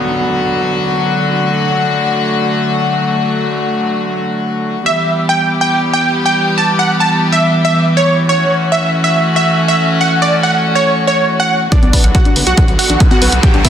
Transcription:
0.00 4.82 D3 medium
0.00 4.82 F#3 medium
0.00 1.40 B3 medium
0.00 4.82 F#4 medium
0.00 downlifter medium
1.43 4.83 A3 medium
4.86 11.68 E3 medium
4.86 8.26 G3 medium
4.86 8.26 B3 medium
4.86 8.26 G4 medium
4.86 5.13 E5 medium
5.29 5.49 G5 medium
5.61 5.81 G5 medium
5.93 6.13 G5 medium
6.26 6.45 G5 medium
6.58 6.71 A5 medium
6.79 6.92 F#5 medium
7.00 7.20 A5 medium
7.32 7.52 E5 medium
7.65 7.85 E5 medium
7.97 8.17 C#5 medium
8.29 11.68 A3 medium
8.29 11.68 C#4 medium
8.29 11.68 F#4 medium
8.29 8.56 C#5 medium
8.72 8.92 E5 medium
9.04 9.24 E5 medium
9.36 9.56 E5 medium
9.68 9.88 E5 medium
10.01 10.14 F#5 medium
10.22 10.35 D5 medium
10.43 10.63 F#5 medium
10.75 10.95 C#5 medium
11.07 11.27 C#5 medium
11.40 11.60 F#5 medium
11.72 13.69 D3 medium
11.72 13.69 F#3 medium
11.72 11.78 B3 medium
11.72 13.69 B3 medium
11.72 11.98 D4 medium
11.72 13.69 F#4 medium
11.72 11.98 D5 loud
11.72 kick loud
11.72 closed hi-hat medium
11.72 riser medium
11.83 11.89 B1 medium
11.83 closed hi-hat soft
11.83 high conga medium
11.93 12.02 B4 medium
11.93 kick medium
11.93 open hi-hat loud
12.04 12.10 B1 medium
12.04 12.13 F#5 medium
12.04 closed hi-hat soft
12.15 12.35 F#4 medium
12.15 12.35 F#5 medium
12.15 kick loud
12.15 closed hi-hat medium
12.25 12.31 D4 medium
12.25 closed hi-hat soft
12.36 12.43 F#1 medium
12.36 12.42 B3 medium
12.36 open hi-hat medium
12.47 12.53 B1 medium
12.47 12.67 F#4 medium
12.47 12.67 F#5 medium
12.47 closed hi-hat soft
12.57 12.66 B4 medium
12.57 kick loud
12.57 closed hi-hat medium
12.68 12.75 B1 medium
12.68 12.77 F#5 medium
12.68 closed hi-hat soft
12.79 12.99 F#4 medium
12.79 12.99 F#5 medium
12.79 open hi-hat loud
12.90 12.96 A1 medium
12.90 12.96 D4 medium
12.90 closed hi-hat soft
13.00 13.06 B3 medium
13.00 kick loud
13.00 closed hi-hat medium
13.11 13.31 F#4 medium
13.11 13.31 F#5 medium
13.11 closed hi-hat soft
13.11 high conga medium
13.22 13.28 B1 medium
13.22 13.30 B4 medium
13.22 open hi-hat medium
13.32 13.39 B1 medium
13.32 13.41 F#5 medium
13.32 closed hi-hat medium
13.43 13.56 G4 medium
13.43 13.56 G5 medium
13.43 kick loud
13.43 closed hi-hat soft
13.54 13.60 B1 medium
13.54 13.60 D4 medium
13.54 closed hi-hat soft
13.65 13.69 B3 medium
13.65 13.69 E4 medium
13.65 13.69 E5 medium
13.65 kick medium
13.65 open hi-hat loud

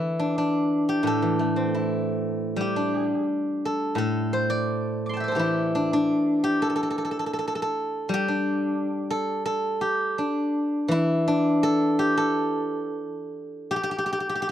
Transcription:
0.00 1.21 E3 soft
0.00 0.19 D4 medium
0.00 1.74 E4 medium
0.19 0.37 D4 soft
0.38 2.76 D4 medium
0.89 2.60 G4 medium
1.03 3.09 A2 soft
1.07 3.27 A4 medium
1.22 2.59 E3 soft
1.39 2.76 A3 soft
1.56 2.93 C4 soft
1.74 3.11 E4 soft
2.56 4.65 G3 soft
2.61 4.96 G4 medium
2.76 4.14 D4 soft
3.65 3.98 A4 medium
3.95 6.08 A2 soft
3.95 5.31 A4 medium
4.33 5.28 C5 medium
4.50 5.23 D5 medium
5.06 6.40 C6 soft
5.06 6.28 D6 soft
5.13 6.72 G5 soft
5.13 6.58 A5 soft
5.20 7.08 D5 soft
5.20 6.92 E5 soft
5.28 6.62 A4 soft
5.28 7.26 C5 soft
5.35 7.44 E3 soft
5.35 6.43 G4 soft
5.39 8.00 E4 medium
5.75 5.93 D4 medium
5.93 8.28 D4 medium
6.44 8.13 G4 medium
6.62 6.69 A4 medium
6.70 6.75 A4 soft
6.76 6.82 A4 medium
6.83 6.90 A4 soft
6.90 6.98 A4 soft
6.98 7.04 A4 soft
7.05 7.11 A4 soft
7.11 7.19 A4 soft
7.19 7.26 A4 soft
7.26 7.33 A4 soft
7.33 7.38 A4 soft
7.39 7.47 A4 soft
7.48 7.55 A4 soft
7.55 7.62 A4 soft
7.62 9.10 A4 medium
8.09 10.16 G3 medium
8.14 9.81 G4 medium
8.28 9.63 D4 soft
9.10 9.45 A4 medium
9.46 11.63 A4 medium
9.81 11.99 G4 medium
10.18 11.27 D4 soft
10.88 13.00 E3 medium
10.88 13.52 E4 medium
11.28 14.07 D4 medium
11.63 12.17 A4 medium
11.99 13.70 G4 medium
12.17 14.37 A4 medium
13.71 13.76 G4 medium
13.76 13.83 G4 medium
13.83 13.91 G4 medium
13.91 13.98 G4 medium
13.98 14.05 G4 medium
14.06 14.12 G4 medium
14.13 14.20 G4 medium
14.20 14.29 G4 soft
14.29 14.35 G4 medium
14.35 14.42 G4 soft
14.42 14.48 G4 medium

